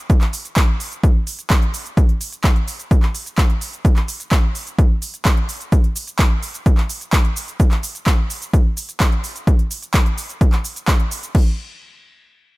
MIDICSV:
0, 0, Header, 1, 2, 480
1, 0, Start_track
1, 0, Tempo, 468750
1, 100, Time_signature, 4, 2, 24, 8
1, 12876, End_track
2, 0, Start_track
2, 0, Title_t, "Drums"
2, 100, Note_on_c, 9, 36, 124
2, 100, Note_on_c, 9, 42, 80
2, 103, Note_on_c, 9, 82, 32
2, 202, Note_off_c, 9, 36, 0
2, 202, Note_off_c, 9, 42, 0
2, 205, Note_off_c, 9, 82, 0
2, 217, Note_on_c, 9, 39, 40
2, 220, Note_on_c, 9, 42, 38
2, 319, Note_off_c, 9, 39, 0
2, 322, Note_off_c, 9, 42, 0
2, 340, Note_on_c, 9, 46, 113
2, 343, Note_on_c, 9, 82, 79
2, 442, Note_off_c, 9, 46, 0
2, 445, Note_off_c, 9, 82, 0
2, 460, Note_on_c, 9, 42, 54
2, 463, Note_on_c, 9, 82, 44
2, 562, Note_off_c, 9, 42, 0
2, 565, Note_off_c, 9, 82, 0
2, 577, Note_on_c, 9, 39, 126
2, 580, Note_on_c, 9, 36, 127
2, 580, Note_on_c, 9, 42, 83
2, 583, Note_on_c, 9, 82, 34
2, 680, Note_off_c, 9, 39, 0
2, 682, Note_off_c, 9, 36, 0
2, 682, Note_off_c, 9, 42, 0
2, 685, Note_off_c, 9, 82, 0
2, 821, Note_on_c, 9, 46, 111
2, 824, Note_on_c, 9, 82, 78
2, 923, Note_off_c, 9, 46, 0
2, 926, Note_off_c, 9, 82, 0
2, 940, Note_on_c, 9, 42, 52
2, 943, Note_on_c, 9, 82, 44
2, 1043, Note_off_c, 9, 42, 0
2, 1046, Note_off_c, 9, 82, 0
2, 1060, Note_on_c, 9, 36, 125
2, 1060, Note_on_c, 9, 42, 78
2, 1063, Note_on_c, 9, 82, 32
2, 1162, Note_off_c, 9, 36, 0
2, 1162, Note_off_c, 9, 42, 0
2, 1165, Note_off_c, 9, 82, 0
2, 1300, Note_on_c, 9, 46, 112
2, 1303, Note_on_c, 9, 82, 74
2, 1403, Note_off_c, 9, 46, 0
2, 1406, Note_off_c, 9, 82, 0
2, 1420, Note_on_c, 9, 42, 52
2, 1423, Note_on_c, 9, 82, 43
2, 1522, Note_off_c, 9, 42, 0
2, 1525, Note_off_c, 9, 82, 0
2, 1538, Note_on_c, 9, 39, 126
2, 1540, Note_on_c, 9, 36, 127
2, 1540, Note_on_c, 9, 42, 78
2, 1543, Note_on_c, 9, 82, 33
2, 1640, Note_off_c, 9, 39, 0
2, 1642, Note_off_c, 9, 36, 0
2, 1643, Note_off_c, 9, 42, 0
2, 1646, Note_off_c, 9, 82, 0
2, 1660, Note_on_c, 9, 42, 37
2, 1763, Note_off_c, 9, 42, 0
2, 1780, Note_on_c, 9, 46, 112
2, 1783, Note_on_c, 9, 82, 75
2, 1883, Note_off_c, 9, 46, 0
2, 1886, Note_off_c, 9, 82, 0
2, 1900, Note_on_c, 9, 42, 51
2, 1903, Note_on_c, 9, 82, 43
2, 2003, Note_off_c, 9, 42, 0
2, 2006, Note_off_c, 9, 82, 0
2, 2020, Note_on_c, 9, 36, 126
2, 2021, Note_on_c, 9, 42, 77
2, 2024, Note_on_c, 9, 82, 34
2, 2122, Note_off_c, 9, 36, 0
2, 2123, Note_off_c, 9, 42, 0
2, 2126, Note_off_c, 9, 82, 0
2, 2140, Note_on_c, 9, 42, 37
2, 2243, Note_off_c, 9, 42, 0
2, 2260, Note_on_c, 9, 46, 112
2, 2263, Note_on_c, 9, 82, 78
2, 2363, Note_off_c, 9, 46, 0
2, 2366, Note_off_c, 9, 82, 0
2, 2380, Note_on_c, 9, 42, 52
2, 2383, Note_on_c, 9, 82, 46
2, 2483, Note_off_c, 9, 42, 0
2, 2486, Note_off_c, 9, 82, 0
2, 2497, Note_on_c, 9, 39, 123
2, 2500, Note_on_c, 9, 36, 126
2, 2500, Note_on_c, 9, 42, 79
2, 2503, Note_on_c, 9, 82, 34
2, 2600, Note_off_c, 9, 39, 0
2, 2602, Note_off_c, 9, 42, 0
2, 2603, Note_off_c, 9, 36, 0
2, 2605, Note_off_c, 9, 82, 0
2, 2621, Note_on_c, 9, 42, 36
2, 2723, Note_off_c, 9, 42, 0
2, 2740, Note_on_c, 9, 46, 106
2, 2743, Note_on_c, 9, 82, 75
2, 2843, Note_off_c, 9, 46, 0
2, 2846, Note_off_c, 9, 82, 0
2, 2861, Note_on_c, 9, 42, 52
2, 2864, Note_on_c, 9, 82, 45
2, 2963, Note_off_c, 9, 42, 0
2, 2966, Note_off_c, 9, 82, 0
2, 2980, Note_on_c, 9, 36, 126
2, 2981, Note_on_c, 9, 42, 76
2, 2984, Note_on_c, 9, 82, 33
2, 3083, Note_off_c, 9, 36, 0
2, 3083, Note_off_c, 9, 42, 0
2, 3086, Note_off_c, 9, 82, 0
2, 3098, Note_on_c, 9, 39, 36
2, 3201, Note_off_c, 9, 39, 0
2, 3221, Note_on_c, 9, 46, 113
2, 3224, Note_on_c, 9, 82, 76
2, 3324, Note_off_c, 9, 46, 0
2, 3327, Note_off_c, 9, 82, 0
2, 3341, Note_on_c, 9, 42, 51
2, 3344, Note_on_c, 9, 82, 43
2, 3444, Note_off_c, 9, 42, 0
2, 3446, Note_off_c, 9, 82, 0
2, 3458, Note_on_c, 9, 39, 118
2, 3460, Note_on_c, 9, 36, 125
2, 3461, Note_on_c, 9, 42, 81
2, 3464, Note_on_c, 9, 82, 33
2, 3561, Note_off_c, 9, 39, 0
2, 3563, Note_off_c, 9, 36, 0
2, 3563, Note_off_c, 9, 42, 0
2, 3566, Note_off_c, 9, 82, 0
2, 3581, Note_on_c, 9, 42, 35
2, 3683, Note_off_c, 9, 42, 0
2, 3700, Note_on_c, 9, 46, 107
2, 3703, Note_on_c, 9, 82, 75
2, 3803, Note_off_c, 9, 46, 0
2, 3806, Note_off_c, 9, 82, 0
2, 3821, Note_on_c, 9, 42, 49
2, 3824, Note_on_c, 9, 82, 43
2, 3923, Note_off_c, 9, 42, 0
2, 3926, Note_off_c, 9, 82, 0
2, 3940, Note_on_c, 9, 36, 121
2, 3941, Note_on_c, 9, 42, 78
2, 3944, Note_on_c, 9, 82, 35
2, 4043, Note_off_c, 9, 36, 0
2, 4043, Note_off_c, 9, 42, 0
2, 4046, Note_off_c, 9, 82, 0
2, 4058, Note_on_c, 9, 39, 36
2, 4061, Note_on_c, 9, 42, 37
2, 4161, Note_off_c, 9, 39, 0
2, 4163, Note_off_c, 9, 42, 0
2, 4181, Note_on_c, 9, 46, 110
2, 4184, Note_on_c, 9, 82, 80
2, 4284, Note_off_c, 9, 46, 0
2, 4287, Note_off_c, 9, 82, 0
2, 4301, Note_on_c, 9, 42, 53
2, 4304, Note_on_c, 9, 82, 49
2, 4403, Note_off_c, 9, 42, 0
2, 4406, Note_off_c, 9, 82, 0
2, 4419, Note_on_c, 9, 39, 121
2, 4420, Note_on_c, 9, 36, 123
2, 4421, Note_on_c, 9, 42, 81
2, 4424, Note_on_c, 9, 82, 36
2, 4521, Note_off_c, 9, 39, 0
2, 4522, Note_off_c, 9, 36, 0
2, 4524, Note_off_c, 9, 42, 0
2, 4527, Note_off_c, 9, 82, 0
2, 4661, Note_on_c, 9, 46, 105
2, 4664, Note_on_c, 9, 82, 78
2, 4763, Note_off_c, 9, 46, 0
2, 4766, Note_off_c, 9, 82, 0
2, 4781, Note_on_c, 9, 42, 53
2, 4784, Note_on_c, 9, 82, 45
2, 4883, Note_off_c, 9, 42, 0
2, 4886, Note_off_c, 9, 82, 0
2, 4900, Note_on_c, 9, 36, 121
2, 4901, Note_on_c, 9, 42, 75
2, 4904, Note_on_c, 9, 82, 34
2, 5003, Note_off_c, 9, 36, 0
2, 5003, Note_off_c, 9, 42, 0
2, 5006, Note_off_c, 9, 82, 0
2, 5141, Note_on_c, 9, 46, 105
2, 5144, Note_on_c, 9, 82, 78
2, 5243, Note_off_c, 9, 46, 0
2, 5246, Note_off_c, 9, 82, 0
2, 5261, Note_on_c, 9, 42, 51
2, 5264, Note_on_c, 9, 82, 46
2, 5363, Note_off_c, 9, 42, 0
2, 5366, Note_off_c, 9, 82, 0
2, 5378, Note_on_c, 9, 39, 119
2, 5380, Note_on_c, 9, 36, 118
2, 5381, Note_on_c, 9, 42, 79
2, 5384, Note_on_c, 9, 82, 36
2, 5481, Note_off_c, 9, 39, 0
2, 5483, Note_off_c, 9, 36, 0
2, 5483, Note_off_c, 9, 42, 0
2, 5486, Note_off_c, 9, 82, 0
2, 5500, Note_on_c, 9, 42, 36
2, 5603, Note_off_c, 9, 42, 0
2, 5620, Note_on_c, 9, 46, 108
2, 5623, Note_on_c, 9, 82, 81
2, 5723, Note_off_c, 9, 46, 0
2, 5726, Note_off_c, 9, 82, 0
2, 5741, Note_on_c, 9, 42, 50
2, 5744, Note_on_c, 9, 82, 46
2, 5843, Note_off_c, 9, 42, 0
2, 5846, Note_off_c, 9, 82, 0
2, 5860, Note_on_c, 9, 36, 116
2, 5860, Note_on_c, 9, 42, 82
2, 5863, Note_on_c, 9, 82, 36
2, 5963, Note_off_c, 9, 36, 0
2, 5963, Note_off_c, 9, 42, 0
2, 5966, Note_off_c, 9, 82, 0
2, 5980, Note_on_c, 9, 42, 38
2, 6083, Note_off_c, 9, 42, 0
2, 6100, Note_on_c, 9, 46, 103
2, 6103, Note_on_c, 9, 82, 86
2, 6203, Note_off_c, 9, 46, 0
2, 6206, Note_off_c, 9, 82, 0
2, 6220, Note_on_c, 9, 42, 55
2, 6223, Note_on_c, 9, 82, 49
2, 6322, Note_off_c, 9, 42, 0
2, 6325, Note_off_c, 9, 82, 0
2, 6337, Note_on_c, 9, 39, 120
2, 6340, Note_on_c, 9, 36, 119
2, 6340, Note_on_c, 9, 42, 83
2, 6343, Note_on_c, 9, 82, 36
2, 6440, Note_off_c, 9, 39, 0
2, 6442, Note_off_c, 9, 36, 0
2, 6442, Note_off_c, 9, 42, 0
2, 6445, Note_off_c, 9, 82, 0
2, 6580, Note_on_c, 9, 46, 107
2, 6583, Note_on_c, 9, 82, 84
2, 6683, Note_off_c, 9, 46, 0
2, 6685, Note_off_c, 9, 82, 0
2, 6700, Note_on_c, 9, 42, 55
2, 6703, Note_on_c, 9, 82, 47
2, 6802, Note_off_c, 9, 42, 0
2, 6805, Note_off_c, 9, 82, 0
2, 6820, Note_on_c, 9, 36, 116
2, 6820, Note_on_c, 9, 42, 81
2, 6823, Note_on_c, 9, 82, 37
2, 6922, Note_off_c, 9, 36, 0
2, 6922, Note_off_c, 9, 42, 0
2, 6925, Note_off_c, 9, 82, 0
2, 6937, Note_on_c, 9, 39, 35
2, 7040, Note_off_c, 9, 39, 0
2, 7060, Note_on_c, 9, 46, 103
2, 7063, Note_on_c, 9, 82, 86
2, 7163, Note_off_c, 9, 46, 0
2, 7166, Note_off_c, 9, 82, 0
2, 7180, Note_on_c, 9, 42, 54
2, 7183, Note_on_c, 9, 82, 46
2, 7282, Note_off_c, 9, 42, 0
2, 7285, Note_off_c, 9, 82, 0
2, 7298, Note_on_c, 9, 39, 121
2, 7300, Note_on_c, 9, 36, 114
2, 7300, Note_on_c, 9, 42, 85
2, 7303, Note_on_c, 9, 82, 36
2, 7400, Note_off_c, 9, 39, 0
2, 7403, Note_off_c, 9, 36, 0
2, 7403, Note_off_c, 9, 42, 0
2, 7406, Note_off_c, 9, 82, 0
2, 7420, Note_on_c, 9, 42, 37
2, 7522, Note_off_c, 9, 42, 0
2, 7540, Note_on_c, 9, 46, 107
2, 7543, Note_on_c, 9, 82, 83
2, 7642, Note_off_c, 9, 46, 0
2, 7645, Note_off_c, 9, 82, 0
2, 7660, Note_on_c, 9, 42, 51
2, 7663, Note_on_c, 9, 82, 46
2, 7763, Note_off_c, 9, 42, 0
2, 7766, Note_off_c, 9, 82, 0
2, 7780, Note_on_c, 9, 36, 112
2, 7781, Note_on_c, 9, 42, 84
2, 7784, Note_on_c, 9, 82, 38
2, 7883, Note_off_c, 9, 36, 0
2, 7883, Note_off_c, 9, 42, 0
2, 7886, Note_off_c, 9, 82, 0
2, 7898, Note_on_c, 9, 39, 37
2, 7901, Note_on_c, 9, 42, 39
2, 8000, Note_off_c, 9, 39, 0
2, 8003, Note_off_c, 9, 42, 0
2, 8021, Note_on_c, 9, 46, 106
2, 8024, Note_on_c, 9, 82, 87
2, 8123, Note_off_c, 9, 46, 0
2, 8126, Note_off_c, 9, 82, 0
2, 8141, Note_on_c, 9, 42, 55
2, 8144, Note_on_c, 9, 82, 50
2, 8243, Note_off_c, 9, 42, 0
2, 8246, Note_off_c, 9, 82, 0
2, 8258, Note_on_c, 9, 39, 123
2, 8260, Note_on_c, 9, 36, 115
2, 8261, Note_on_c, 9, 42, 84
2, 8264, Note_on_c, 9, 82, 37
2, 8360, Note_off_c, 9, 39, 0
2, 8362, Note_off_c, 9, 36, 0
2, 8363, Note_off_c, 9, 42, 0
2, 8366, Note_off_c, 9, 82, 0
2, 8501, Note_on_c, 9, 46, 104
2, 8504, Note_on_c, 9, 82, 82
2, 8603, Note_off_c, 9, 46, 0
2, 8606, Note_off_c, 9, 82, 0
2, 8621, Note_on_c, 9, 42, 54
2, 8624, Note_on_c, 9, 82, 48
2, 8723, Note_off_c, 9, 42, 0
2, 8726, Note_off_c, 9, 82, 0
2, 8740, Note_on_c, 9, 36, 117
2, 8741, Note_on_c, 9, 42, 83
2, 8744, Note_on_c, 9, 82, 38
2, 8842, Note_off_c, 9, 36, 0
2, 8843, Note_off_c, 9, 42, 0
2, 8846, Note_off_c, 9, 82, 0
2, 8980, Note_on_c, 9, 46, 105
2, 8983, Note_on_c, 9, 82, 82
2, 9083, Note_off_c, 9, 46, 0
2, 9086, Note_off_c, 9, 82, 0
2, 9101, Note_on_c, 9, 42, 56
2, 9104, Note_on_c, 9, 82, 48
2, 9203, Note_off_c, 9, 42, 0
2, 9206, Note_off_c, 9, 82, 0
2, 9218, Note_on_c, 9, 39, 123
2, 9220, Note_on_c, 9, 36, 116
2, 9221, Note_on_c, 9, 42, 85
2, 9224, Note_on_c, 9, 82, 38
2, 9321, Note_off_c, 9, 39, 0
2, 9322, Note_off_c, 9, 36, 0
2, 9323, Note_off_c, 9, 42, 0
2, 9326, Note_off_c, 9, 82, 0
2, 9341, Note_on_c, 9, 42, 38
2, 9443, Note_off_c, 9, 42, 0
2, 9461, Note_on_c, 9, 46, 100
2, 9464, Note_on_c, 9, 82, 84
2, 9563, Note_off_c, 9, 46, 0
2, 9566, Note_off_c, 9, 82, 0
2, 9581, Note_on_c, 9, 42, 55
2, 9584, Note_on_c, 9, 82, 47
2, 9683, Note_off_c, 9, 42, 0
2, 9686, Note_off_c, 9, 82, 0
2, 9700, Note_on_c, 9, 36, 115
2, 9701, Note_on_c, 9, 42, 84
2, 9704, Note_on_c, 9, 82, 36
2, 9803, Note_off_c, 9, 36, 0
2, 9803, Note_off_c, 9, 42, 0
2, 9806, Note_off_c, 9, 82, 0
2, 9821, Note_on_c, 9, 42, 40
2, 9924, Note_off_c, 9, 42, 0
2, 9941, Note_on_c, 9, 46, 106
2, 9944, Note_on_c, 9, 82, 82
2, 10043, Note_off_c, 9, 46, 0
2, 10046, Note_off_c, 9, 82, 0
2, 10061, Note_on_c, 9, 42, 59
2, 10064, Note_on_c, 9, 82, 50
2, 10163, Note_off_c, 9, 42, 0
2, 10166, Note_off_c, 9, 82, 0
2, 10178, Note_on_c, 9, 39, 125
2, 10180, Note_on_c, 9, 36, 118
2, 10181, Note_on_c, 9, 42, 90
2, 10184, Note_on_c, 9, 82, 36
2, 10281, Note_off_c, 9, 39, 0
2, 10282, Note_off_c, 9, 36, 0
2, 10283, Note_off_c, 9, 42, 0
2, 10286, Note_off_c, 9, 82, 0
2, 10301, Note_on_c, 9, 42, 39
2, 10403, Note_off_c, 9, 42, 0
2, 10421, Note_on_c, 9, 46, 99
2, 10424, Note_on_c, 9, 82, 82
2, 10523, Note_off_c, 9, 46, 0
2, 10526, Note_off_c, 9, 82, 0
2, 10541, Note_on_c, 9, 42, 58
2, 10544, Note_on_c, 9, 82, 48
2, 10643, Note_off_c, 9, 42, 0
2, 10646, Note_off_c, 9, 82, 0
2, 10660, Note_on_c, 9, 36, 122
2, 10661, Note_on_c, 9, 42, 84
2, 10664, Note_on_c, 9, 82, 36
2, 10763, Note_off_c, 9, 36, 0
2, 10763, Note_off_c, 9, 42, 0
2, 10766, Note_off_c, 9, 82, 0
2, 10777, Note_on_c, 9, 39, 38
2, 10780, Note_on_c, 9, 42, 39
2, 10880, Note_off_c, 9, 39, 0
2, 10883, Note_off_c, 9, 42, 0
2, 10900, Note_on_c, 9, 46, 104
2, 10903, Note_on_c, 9, 82, 85
2, 11003, Note_off_c, 9, 46, 0
2, 11006, Note_off_c, 9, 82, 0
2, 11021, Note_on_c, 9, 42, 57
2, 11024, Note_on_c, 9, 82, 48
2, 11123, Note_off_c, 9, 42, 0
2, 11126, Note_off_c, 9, 82, 0
2, 11138, Note_on_c, 9, 39, 125
2, 11140, Note_on_c, 9, 36, 117
2, 11141, Note_on_c, 9, 42, 87
2, 11144, Note_on_c, 9, 82, 37
2, 11241, Note_off_c, 9, 39, 0
2, 11242, Note_off_c, 9, 36, 0
2, 11243, Note_off_c, 9, 42, 0
2, 11246, Note_off_c, 9, 82, 0
2, 11260, Note_on_c, 9, 42, 39
2, 11363, Note_off_c, 9, 42, 0
2, 11380, Note_on_c, 9, 46, 107
2, 11383, Note_on_c, 9, 82, 81
2, 11483, Note_off_c, 9, 46, 0
2, 11486, Note_off_c, 9, 82, 0
2, 11500, Note_on_c, 9, 42, 55
2, 11503, Note_on_c, 9, 82, 46
2, 11602, Note_off_c, 9, 42, 0
2, 11605, Note_off_c, 9, 82, 0
2, 11620, Note_on_c, 9, 36, 117
2, 11620, Note_on_c, 9, 49, 88
2, 11722, Note_off_c, 9, 49, 0
2, 11723, Note_off_c, 9, 36, 0
2, 12876, End_track
0, 0, End_of_file